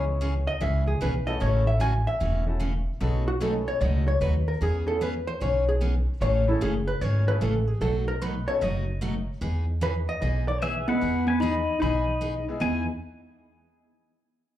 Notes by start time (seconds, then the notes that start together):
Already playing: C#2 G#3 B3 C#4 E4 G#4 C#5
0.21 C#3 E3 B3 C#4 G#4
0.47 D#5
0.60 C#2 C#3 E3 B3 C#4 G#4 E5
0.87 G#4
1.01 B1 C#3 E3 B3 C#4 G#4 B4
1.26 A3 C#4 E4 F#4 A4 D#5
1.40 A1 C#3 E3 A3 C#4 F#4 C#5
1.67 E5
1.80 C#3 E3 A3 C#4 F#4 G#5
2.07 E5
2.20 E1 C#3 E3 A3 C#4 F#4
2.46 A3 C#4 E4 F#4 A4
2.60 C#3 E3 A3 C#4 F#4
3.00 B1 B2 F#3 A3 B3 C#4 D#4 F#4 G#4 A4
3.28 F#4
3.40 B2 F#3 A3 B3 C#4 D#4 F#4 G#4 A4
3.68 C#5
3.81 C#2 B2 F#3 A3 D#4 F#4 D#5
4.08 C#5
4.21 D#2 B2 F#3 A3 D#4 F#4 B4
4.48 A#4
4.61 E2 E3 B3 C#4 G#4
4.87 B3 C#4 E4 F#4 G#4 A4
5.01 E3 B3 C#4 G#4 B4
5.27 C5
5.40 B1 E3 B3 C#4 G#4 C#5
5.69 G#4
5.81 E3 B3 C#4 G#4
6.21 A1 C#3 E3 A3 C#4 G#4 C#5
6.48 A3 C#4 E4 G#4 A4
6.61 F#1 C#3 E3 A3 C#4 G#4
6.88 B4
7.01 G#1 C#3 E3 A3 C#4 G#4 C#5
7.27 A3 C#4 E4 G#4 A4 B4
7.41 A1 C#3 E3 A3 C#4 G#4 A4
7.67 G#4
7.81 B1 B2 F#3 A3 D#4 F#4 A4
8.08 A#4
8.21 B2 F#3 A3 D#4 F#4 B4
8.47 B3 C#4 D#4 F#4 A4 C#5
8.61 F#1 B2 F#3 A3 D#4 F#4 D#5
9.01 B2 F#3 A3 D#4 F#4
9.41 E2 E3 B3 D#4 G#4
9.81 E3 B3 D#4 G#4 B4
10.09 D#5
10.22 B1 E3 B3 D#4 G#4 D#5
10.48 D5
10.62 E3 B3 D#4 G#4 B4 E5
10.88 G#3 B3 D#4 E4 G#4 B4 F#5
11.01 E2 E3 B3 D#4 G#4
11.27 B3 B4 G#5
11.40 E3 B3 D#4 G#4 D#5 B5
11.80 B1 E3 B3 D#4 G#4 D#5 B5
12.21 E3 B3 D#4 G#4
12.48 G#3 B3 D#4 E4 G#4
12.60 E2 E3 B3 D#4 E4 G#4 G#5